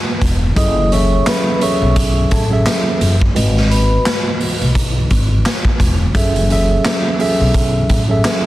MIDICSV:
0, 0, Header, 1, 5, 480
1, 0, Start_track
1, 0, Tempo, 697674
1, 390, Time_signature, 4, 2, 24, 8
1, 5820, End_track
2, 0, Start_track
2, 0, Title_t, "Vibraphone"
2, 0, Program_c, 0, 11
2, 389, Note_on_c, 0, 75, 98
2, 395, Note_on_c, 0, 87, 77
2, 605, Note_off_c, 0, 75, 0
2, 609, Note_off_c, 0, 87, 0
2, 628, Note_on_c, 0, 73, 81
2, 634, Note_on_c, 0, 85, 76
2, 845, Note_off_c, 0, 73, 0
2, 848, Note_off_c, 0, 85, 0
2, 867, Note_on_c, 0, 71, 83
2, 873, Note_on_c, 0, 83, 65
2, 1085, Note_off_c, 0, 71, 0
2, 1088, Note_off_c, 0, 83, 0
2, 1109, Note_on_c, 0, 73, 76
2, 1114, Note_on_c, 0, 85, 63
2, 1326, Note_off_c, 0, 73, 0
2, 1328, Note_off_c, 0, 85, 0
2, 1585, Note_on_c, 0, 69, 76
2, 1590, Note_on_c, 0, 81, 59
2, 1715, Note_off_c, 0, 69, 0
2, 1718, Note_off_c, 0, 81, 0
2, 2543, Note_on_c, 0, 71, 79
2, 2548, Note_on_c, 0, 83, 62
2, 2905, Note_off_c, 0, 71, 0
2, 2907, Note_off_c, 0, 83, 0
2, 5820, End_track
3, 0, Start_track
3, 0, Title_t, "Tine electric piano"
3, 0, Program_c, 1, 4
3, 0, Note_on_c, 1, 44, 94
3, 0, Note_on_c, 1, 56, 80
3, 0, Note_on_c, 1, 66, 84
3, 0, Note_on_c, 1, 71, 75
3, 0, Note_on_c, 1, 75, 100
3, 243, Note_off_c, 1, 44, 0
3, 246, Note_off_c, 1, 56, 0
3, 248, Note_off_c, 1, 66, 0
3, 250, Note_off_c, 1, 71, 0
3, 253, Note_off_c, 1, 75, 0
3, 379, Note_on_c, 1, 54, 97
3, 384, Note_on_c, 1, 61, 85
3, 388, Note_on_c, 1, 68, 79
3, 393, Note_on_c, 1, 69, 82
3, 398, Note_on_c, 1, 64, 106
3, 609, Note_off_c, 1, 54, 0
3, 611, Note_off_c, 1, 61, 0
3, 613, Note_off_c, 1, 68, 0
3, 616, Note_off_c, 1, 69, 0
3, 618, Note_off_c, 1, 64, 0
3, 626, Note_on_c, 1, 54, 91
3, 631, Note_on_c, 1, 61, 90
3, 635, Note_on_c, 1, 68, 88
3, 640, Note_on_c, 1, 69, 85
3, 645, Note_on_c, 1, 76, 118
3, 1076, Note_off_c, 1, 54, 0
3, 1079, Note_off_c, 1, 61, 0
3, 1081, Note_off_c, 1, 68, 0
3, 1084, Note_off_c, 1, 69, 0
3, 1086, Note_off_c, 1, 76, 0
3, 1098, Note_on_c, 1, 54, 88
3, 1103, Note_on_c, 1, 61, 87
3, 1108, Note_on_c, 1, 68, 84
3, 1113, Note_on_c, 1, 69, 88
3, 1118, Note_on_c, 1, 76, 114
3, 1669, Note_off_c, 1, 54, 0
3, 1671, Note_off_c, 1, 61, 0
3, 1674, Note_off_c, 1, 68, 0
3, 1676, Note_off_c, 1, 69, 0
3, 1679, Note_off_c, 1, 76, 0
3, 1720, Note_on_c, 1, 54, 100
3, 1725, Note_on_c, 1, 61, 83
3, 1730, Note_on_c, 1, 68, 86
3, 1735, Note_on_c, 1, 69, 89
3, 1740, Note_on_c, 1, 76, 107
3, 2161, Note_off_c, 1, 54, 0
3, 2163, Note_off_c, 1, 61, 0
3, 2166, Note_off_c, 1, 68, 0
3, 2168, Note_off_c, 1, 69, 0
3, 2170, Note_off_c, 1, 76, 0
3, 2292, Note_on_c, 1, 44, 91
3, 2297, Note_on_c, 1, 56, 81
3, 2302, Note_on_c, 1, 66, 84
3, 2306, Note_on_c, 1, 71, 77
3, 2312, Note_on_c, 1, 75, 96
3, 4083, Note_off_c, 1, 44, 0
3, 4085, Note_off_c, 1, 56, 0
3, 4088, Note_off_c, 1, 66, 0
3, 4090, Note_off_c, 1, 71, 0
3, 4093, Note_off_c, 1, 75, 0
3, 4221, Note_on_c, 1, 54, 98
3, 4226, Note_on_c, 1, 61, 87
3, 4230, Note_on_c, 1, 68, 83
3, 4235, Note_on_c, 1, 69, 83
3, 4240, Note_on_c, 1, 76, 108
3, 4450, Note_off_c, 1, 54, 0
3, 4452, Note_off_c, 1, 61, 0
3, 4454, Note_off_c, 1, 68, 0
3, 4457, Note_off_c, 1, 69, 0
3, 4459, Note_off_c, 1, 76, 0
3, 4468, Note_on_c, 1, 54, 92
3, 4473, Note_on_c, 1, 61, 94
3, 4478, Note_on_c, 1, 68, 86
3, 4483, Note_on_c, 1, 69, 86
3, 4488, Note_on_c, 1, 76, 118
3, 4918, Note_off_c, 1, 54, 0
3, 4920, Note_off_c, 1, 61, 0
3, 4923, Note_off_c, 1, 68, 0
3, 4925, Note_off_c, 1, 69, 0
3, 4928, Note_off_c, 1, 76, 0
3, 4941, Note_on_c, 1, 54, 93
3, 4946, Note_on_c, 1, 61, 87
3, 4951, Note_on_c, 1, 68, 82
3, 4956, Note_on_c, 1, 69, 90
3, 4961, Note_on_c, 1, 76, 115
3, 5511, Note_off_c, 1, 54, 0
3, 5513, Note_off_c, 1, 61, 0
3, 5515, Note_off_c, 1, 68, 0
3, 5518, Note_off_c, 1, 69, 0
3, 5520, Note_off_c, 1, 76, 0
3, 5561, Note_on_c, 1, 54, 99
3, 5565, Note_on_c, 1, 61, 87
3, 5570, Note_on_c, 1, 68, 84
3, 5575, Note_on_c, 1, 69, 91
3, 5581, Note_on_c, 1, 76, 110
3, 5820, Note_off_c, 1, 54, 0
3, 5820, Note_off_c, 1, 61, 0
3, 5820, Note_off_c, 1, 68, 0
3, 5820, Note_off_c, 1, 69, 0
3, 5820, Note_off_c, 1, 76, 0
3, 5820, End_track
4, 0, Start_track
4, 0, Title_t, "Upright bass"
4, 0, Program_c, 2, 32
4, 148, Note_on_c, 2, 28, 94
4, 355, Note_off_c, 2, 28, 0
4, 389, Note_on_c, 2, 30, 108
4, 802, Note_off_c, 2, 30, 0
4, 1251, Note_on_c, 2, 35, 96
4, 1542, Note_off_c, 2, 35, 0
4, 1594, Note_on_c, 2, 33, 96
4, 1799, Note_off_c, 2, 33, 0
4, 2070, Note_on_c, 2, 30, 91
4, 2276, Note_off_c, 2, 30, 0
4, 2311, Note_on_c, 2, 32, 113
4, 2723, Note_off_c, 2, 32, 0
4, 3173, Note_on_c, 2, 35, 89
4, 3463, Note_off_c, 2, 35, 0
4, 3515, Note_on_c, 2, 32, 98
4, 3719, Note_off_c, 2, 32, 0
4, 3989, Note_on_c, 2, 28, 99
4, 4196, Note_off_c, 2, 28, 0
4, 4230, Note_on_c, 2, 30, 109
4, 4643, Note_off_c, 2, 30, 0
4, 5093, Note_on_c, 2, 35, 97
4, 5383, Note_off_c, 2, 35, 0
4, 5435, Note_on_c, 2, 33, 98
4, 5639, Note_off_c, 2, 33, 0
4, 5820, End_track
5, 0, Start_track
5, 0, Title_t, "Drums"
5, 148, Note_on_c, 9, 36, 99
5, 152, Note_on_c, 9, 42, 84
5, 216, Note_off_c, 9, 36, 0
5, 221, Note_off_c, 9, 42, 0
5, 389, Note_on_c, 9, 36, 118
5, 391, Note_on_c, 9, 42, 96
5, 457, Note_off_c, 9, 36, 0
5, 460, Note_off_c, 9, 42, 0
5, 633, Note_on_c, 9, 42, 72
5, 702, Note_off_c, 9, 42, 0
5, 872, Note_on_c, 9, 39, 93
5, 874, Note_on_c, 9, 38, 115
5, 874, Note_on_c, 9, 42, 96
5, 941, Note_off_c, 9, 39, 0
5, 942, Note_off_c, 9, 42, 0
5, 943, Note_off_c, 9, 38, 0
5, 1110, Note_on_c, 9, 42, 84
5, 1179, Note_off_c, 9, 42, 0
5, 1349, Note_on_c, 9, 36, 95
5, 1349, Note_on_c, 9, 42, 104
5, 1418, Note_off_c, 9, 36, 0
5, 1418, Note_off_c, 9, 42, 0
5, 1590, Note_on_c, 9, 42, 87
5, 1594, Note_on_c, 9, 36, 96
5, 1659, Note_off_c, 9, 42, 0
5, 1662, Note_off_c, 9, 36, 0
5, 1830, Note_on_c, 9, 42, 98
5, 1833, Note_on_c, 9, 39, 89
5, 1834, Note_on_c, 9, 38, 110
5, 1899, Note_off_c, 9, 42, 0
5, 1901, Note_off_c, 9, 39, 0
5, 1903, Note_off_c, 9, 38, 0
5, 2072, Note_on_c, 9, 42, 82
5, 2141, Note_off_c, 9, 42, 0
5, 2212, Note_on_c, 9, 36, 97
5, 2280, Note_off_c, 9, 36, 0
5, 2312, Note_on_c, 9, 42, 99
5, 2380, Note_off_c, 9, 42, 0
5, 2456, Note_on_c, 9, 38, 35
5, 2525, Note_off_c, 9, 38, 0
5, 2555, Note_on_c, 9, 42, 72
5, 2623, Note_off_c, 9, 42, 0
5, 2793, Note_on_c, 9, 39, 89
5, 2795, Note_on_c, 9, 38, 115
5, 2795, Note_on_c, 9, 42, 92
5, 2862, Note_off_c, 9, 39, 0
5, 2863, Note_off_c, 9, 42, 0
5, 2864, Note_off_c, 9, 38, 0
5, 3031, Note_on_c, 9, 46, 60
5, 3100, Note_off_c, 9, 46, 0
5, 3176, Note_on_c, 9, 42, 50
5, 3245, Note_off_c, 9, 42, 0
5, 3270, Note_on_c, 9, 36, 94
5, 3271, Note_on_c, 9, 42, 102
5, 3339, Note_off_c, 9, 36, 0
5, 3340, Note_off_c, 9, 42, 0
5, 3512, Note_on_c, 9, 42, 88
5, 3515, Note_on_c, 9, 36, 93
5, 3581, Note_off_c, 9, 42, 0
5, 3583, Note_off_c, 9, 36, 0
5, 3752, Note_on_c, 9, 42, 99
5, 3754, Note_on_c, 9, 39, 91
5, 3756, Note_on_c, 9, 38, 112
5, 3821, Note_off_c, 9, 42, 0
5, 3823, Note_off_c, 9, 39, 0
5, 3825, Note_off_c, 9, 38, 0
5, 3885, Note_on_c, 9, 36, 91
5, 3953, Note_off_c, 9, 36, 0
5, 3989, Note_on_c, 9, 36, 98
5, 3993, Note_on_c, 9, 42, 84
5, 4057, Note_off_c, 9, 36, 0
5, 4062, Note_off_c, 9, 42, 0
5, 4230, Note_on_c, 9, 36, 118
5, 4233, Note_on_c, 9, 42, 95
5, 4299, Note_off_c, 9, 36, 0
5, 4302, Note_off_c, 9, 42, 0
5, 4375, Note_on_c, 9, 42, 57
5, 4444, Note_off_c, 9, 42, 0
5, 4475, Note_on_c, 9, 42, 72
5, 4543, Note_off_c, 9, 42, 0
5, 4713, Note_on_c, 9, 39, 93
5, 4715, Note_on_c, 9, 38, 118
5, 4715, Note_on_c, 9, 42, 94
5, 4782, Note_off_c, 9, 39, 0
5, 4784, Note_off_c, 9, 38, 0
5, 4784, Note_off_c, 9, 42, 0
5, 4951, Note_on_c, 9, 46, 62
5, 5020, Note_off_c, 9, 46, 0
5, 5190, Note_on_c, 9, 36, 97
5, 5191, Note_on_c, 9, 42, 99
5, 5259, Note_off_c, 9, 36, 0
5, 5260, Note_off_c, 9, 42, 0
5, 5432, Note_on_c, 9, 42, 84
5, 5435, Note_on_c, 9, 36, 94
5, 5501, Note_off_c, 9, 42, 0
5, 5503, Note_off_c, 9, 36, 0
5, 5672, Note_on_c, 9, 42, 96
5, 5674, Note_on_c, 9, 39, 86
5, 5676, Note_on_c, 9, 38, 107
5, 5741, Note_off_c, 9, 42, 0
5, 5743, Note_off_c, 9, 39, 0
5, 5745, Note_off_c, 9, 38, 0
5, 5820, End_track
0, 0, End_of_file